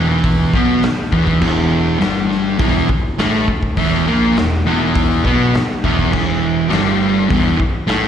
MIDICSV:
0, 0, Header, 1, 6, 480
1, 0, Start_track
1, 0, Key_signature, 1, "minor"
1, 0, Tempo, 588813
1, 1154, Time_signature, 4, 2, 24, 8
1, 6586, End_track
2, 0, Start_track
2, 0, Title_t, "Distorted electric guitar"
2, 0, Program_c, 0, 30
2, 0, Note_on_c, 0, 40, 91
2, 0, Note_on_c, 0, 52, 97
2, 430, Note_off_c, 0, 40, 0
2, 432, Note_off_c, 0, 52, 0
2, 443, Note_on_c, 0, 47, 97
2, 449, Note_on_c, 0, 59, 104
2, 671, Note_off_c, 0, 47, 0
2, 674, Note_off_c, 0, 59, 0
2, 911, Note_on_c, 0, 40, 97
2, 916, Note_on_c, 0, 52, 98
2, 1139, Note_off_c, 0, 40, 0
2, 1144, Note_off_c, 0, 52, 0
2, 1149, Note_on_c, 0, 40, 102
2, 1154, Note_on_c, 0, 52, 116
2, 1622, Note_off_c, 0, 40, 0
2, 1625, Note_on_c, 0, 43, 93
2, 1626, Note_off_c, 0, 52, 0
2, 1629, Note_on_c, 0, 55, 113
2, 2103, Note_off_c, 0, 43, 0
2, 2105, Note_off_c, 0, 55, 0
2, 2108, Note_on_c, 0, 40, 93
2, 2115, Note_on_c, 0, 52, 107
2, 2345, Note_off_c, 0, 40, 0
2, 2348, Note_off_c, 0, 52, 0
2, 2599, Note_on_c, 0, 45, 93
2, 2603, Note_on_c, 0, 57, 110
2, 2830, Note_off_c, 0, 45, 0
2, 2832, Note_off_c, 0, 57, 0
2, 3073, Note_on_c, 0, 40, 94
2, 3084, Note_on_c, 0, 52, 112
2, 3307, Note_off_c, 0, 40, 0
2, 3313, Note_off_c, 0, 52, 0
2, 3315, Note_on_c, 0, 46, 91
2, 3325, Note_on_c, 0, 58, 106
2, 3548, Note_off_c, 0, 46, 0
2, 3553, Note_off_c, 0, 58, 0
2, 3565, Note_on_c, 0, 40, 75
2, 3752, Note_off_c, 0, 40, 0
2, 3797, Note_on_c, 0, 40, 93
2, 3805, Note_on_c, 0, 52, 104
2, 4269, Note_off_c, 0, 40, 0
2, 4273, Note_off_c, 0, 52, 0
2, 4274, Note_on_c, 0, 47, 96
2, 4285, Note_on_c, 0, 59, 106
2, 4507, Note_off_c, 0, 47, 0
2, 4513, Note_off_c, 0, 59, 0
2, 4758, Note_on_c, 0, 40, 100
2, 4766, Note_on_c, 0, 52, 105
2, 4982, Note_off_c, 0, 40, 0
2, 4992, Note_on_c, 0, 40, 96
2, 4993, Note_off_c, 0, 52, 0
2, 5002, Note_on_c, 0, 52, 116
2, 5468, Note_off_c, 0, 40, 0
2, 5468, Note_on_c, 0, 43, 96
2, 5474, Note_off_c, 0, 52, 0
2, 5474, Note_on_c, 0, 55, 115
2, 5942, Note_off_c, 0, 43, 0
2, 5945, Note_off_c, 0, 55, 0
2, 5947, Note_on_c, 0, 40, 89
2, 5953, Note_on_c, 0, 52, 98
2, 6168, Note_off_c, 0, 40, 0
2, 6184, Note_off_c, 0, 52, 0
2, 6416, Note_on_c, 0, 45, 85
2, 6420, Note_on_c, 0, 57, 94
2, 6586, Note_off_c, 0, 45, 0
2, 6586, Note_off_c, 0, 57, 0
2, 6586, End_track
3, 0, Start_track
3, 0, Title_t, "Picked electric bass"
3, 0, Program_c, 1, 34
3, 0, Note_on_c, 1, 28, 104
3, 398, Note_off_c, 1, 28, 0
3, 434, Note_on_c, 1, 35, 98
3, 657, Note_off_c, 1, 35, 0
3, 912, Note_on_c, 1, 28, 93
3, 1137, Note_off_c, 1, 28, 0
3, 1153, Note_on_c, 1, 28, 94
3, 1602, Note_off_c, 1, 28, 0
3, 1637, Note_on_c, 1, 31, 96
3, 2084, Note_off_c, 1, 31, 0
3, 2109, Note_on_c, 1, 28, 90
3, 2336, Note_off_c, 1, 28, 0
3, 2601, Note_on_c, 1, 33, 92
3, 2822, Note_off_c, 1, 33, 0
3, 3072, Note_on_c, 1, 28, 98
3, 3297, Note_off_c, 1, 28, 0
3, 3314, Note_on_c, 1, 34, 98
3, 3538, Note_off_c, 1, 34, 0
3, 3549, Note_on_c, 1, 28, 80
3, 3776, Note_off_c, 1, 28, 0
3, 3789, Note_on_c, 1, 28, 96
3, 4239, Note_off_c, 1, 28, 0
3, 4276, Note_on_c, 1, 35, 93
3, 4499, Note_off_c, 1, 35, 0
3, 4761, Note_on_c, 1, 28, 98
3, 4981, Note_off_c, 1, 28, 0
3, 4994, Note_on_c, 1, 28, 97
3, 5441, Note_off_c, 1, 28, 0
3, 5472, Note_on_c, 1, 31, 99
3, 5918, Note_off_c, 1, 31, 0
3, 5952, Note_on_c, 1, 28, 99
3, 6174, Note_off_c, 1, 28, 0
3, 6414, Note_on_c, 1, 33, 92
3, 6586, Note_off_c, 1, 33, 0
3, 6586, End_track
4, 0, Start_track
4, 0, Title_t, "Muted distorted electric guitar strokes"
4, 684, Note_on_c, 9, 29, 58
4, 766, Note_off_c, 9, 29, 0
4, 2359, Note_on_c, 9, 29, 58
4, 2440, Note_off_c, 9, 29, 0
4, 2840, Note_on_c, 9, 29, 58
4, 2922, Note_off_c, 9, 29, 0
4, 4524, Note_on_c, 9, 29, 59
4, 4605, Note_off_c, 9, 29, 0
4, 6178, Note_on_c, 9, 29, 61
4, 6260, Note_off_c, 9, 29, 0
4, 6586, End_track
5, 0, Start_track
5, 0, Title_t, "Muted picked electric bass strokes"
5, 682, Note_on_c, 9, 29, 41
5, 764, Note_off_c, 9, 29, 0
5, 2357, Note_on_c, 9, 29, 40
5, 2439, Note_off_c, 9, 29, 0
5, 2834, Note_on_c, 9, 29, 39
5, 2915, Note_off_c, 9, 29, 0
5, 4511, Note_on_c, 9, 29, 41
5, 4592, Note_off_c, 9, 29, 0
5, 6192, Note_on_c, 9, 29, 41
5, 6274, Note_off_c, 9, 29, 0
5, 6586, End_track
6, 0, Start_track
6, 0, Title_t, "Drums"
6, 194, Note_on_c, 9, 46, 62
6, 195, Note_on_c, 9, 36, 110
6, 276, Note_off_c, 9, 36, 0
6, 276, Note_off_c, 9, 46, 0
6, 436, Note_on_c, 9, 36, 74
6, 518, Note_off_c, 9, 36, 0
6, 674, Note_on_c, 9, 46, 60
6, 684, Note_on_c, 9, 38, 110
6, 756, Note_off_c, 9, 46, 0
6, 766, Note_off_c, 9, 38, 0
6, 915, Note_on_c, 9, 36, 92
6, 997, Note_off_c, 9, 36, 0
6, 1035, Note_on_c, 9, 36, 82
6, 1117, Note_off_c, 9, 36, 0
6, 1154, Note_on_c, 9, 49, 100
6, 1157, Note_on_c, 9, 36, 93
6, 1236, Note_off_c, 9, 49, 0
6, 1238, Note_off_c, 9, 36, 0
6, 1638, Note_on_c, 9, 46, 53
6, 1648, Note_on_c, 9, 38, 107
6, 1719, Note_off_c, 9, 46, 0
6, 1729, Note_off_c, 9, 38, 0
6, 1886, Note_on_c, 9, 38, 32
6, 1968, Note_off_c, 9, 38, 0
6, 2110, Note_on_c, 9, 46, 63
6, 2115, Note_on_c, 9, 36, 115
6, 2191, Note_off_c, 9, 46, 0
6, 2197, Note_off_c, 9, 36, 0
6, 2358, Note_on_c, 9, 36, 76
6, 2439, Note_off_c, 9, 36, 0
6, 2599, Note_on_c, 9, 46, 61
6, 2608, Note_on_c, 9, 38, 113
6, 2680, Note_off_c, 9, 46, 0
6, 2690, Note_off_c, 9, 38, 0
6, 2836, Note_on_c, 9, 36, 87
6, 2918, Note_off_c, 9, 36, 0
6, 2956, Note_on_c, 9, 36, 81
6, 3037, Note_off_c, 9, 36, 0
6, 3072, Note_on_c, 9, 46, 60
6, 3075, Note_on_c, 9, 36, 91
6, 3153, Note_off_c, 9, 46, 0
6, 3156, Note_off_c, 9, 36, 0
6, 3559, Note_on_c, 9, 46, 62
6, 3569, Note_on_c, 9, 38, 115
6, 3641, Note_off_c, 9, 46, 0
6, 3650, Note_off_c, 9, 38, 0
6, 4039, Note_on_c, 9, 46, 64
6, 4040, Note_on_c, 9, 36, 115
6, 4120, Note_off_c, 9, 46, 0
6, 4121, Note_off_c, 9, 36, 0
6, 4278, Note_on_c, 9, 36, 77
6, 4360, Note_off_c, 9, 36, 0
6, 4518, Note_on_c, 9, 46, 57
6, 4528, Note_on_c, 9, 38, 107
6, 4600, Note_off_c, 9, 46, 0
6, 4609, Note_off_c, 9, 38, 0
6, 4761, Note_on_c, 9, 36, 88
6, 4842, Note_off_c, 9, 36, 0
6, 4882, Note_on_c, 9, 36, 86
6, 4964, Note_off_c, 9, 36, 0
6, 4997, Note_on_c, 9, 49, 94
6, 5001, Note_on_c, 9, 36, 86
6, 5078, Note_off_c, 9, 49, 0
6, 5083, Note_off_c, 9, 36, 0
6, 5479, Note_on_c, 9, 46, 59
6, 5488, Note_on_c, 9, 38, 111
6, 5560, Note_off_c, 9, 46, 0
6, 5570, Note_off_c, 9, 38, 0
6, 5952, Note_on_c, 9, 46, 59
6, 5955, Note_on_c, 9, 36, 110
6, 6033, Note_off_c, 9, 46, 0
6, 6036, Note_off_c, 9, 36, 0
6, 6193, Note_on_c, 9, 36, 75
6, 6275, Note_off_c, 9, 36, 0
6, 6429, Note_on_c, 9, 46, 61
6, 6438, Note_on_c, 9, 38, 109
6, 6510, Note_off_c, 9, 46, 0
6, 6520, Note_off_c, 9, 38, 0
6, 6586, End_track
0, 0, End_of_file